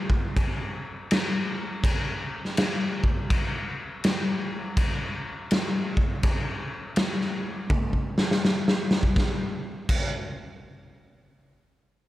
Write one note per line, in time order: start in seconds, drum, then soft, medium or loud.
0.10 kick medium
0.37 kick loud
0.37 crash soft
1.11 snare loud
1.11 crash medium
1.84 kick loud
1.84 crash medium
2.45 snare soft
2.57 snare loud
2.57 crash medium
3.04 kick medium
3.30 kick loud
3.30 crash medium
4.04 snare loud
4.04 crash medium
4.77 kick loud
4.77 crash medium
5.51 snare loud
5.51 crash medium
5.97 kick medium
6.23 kick loud
6.23 crash medium
6.96 snare loud
6.96 crash medium
7.21 snare soft
7.70 kick loud
7.70 high tom medium
7.93 kick medium
8.18 snare medium
8.31 snare medium
8.45 snare medium
8.68 snare medium
8.91 snare medium
9.03 kick medium
9.16 kick loud
9.16 snare medium
9.89 kick loud
9.89 crash medium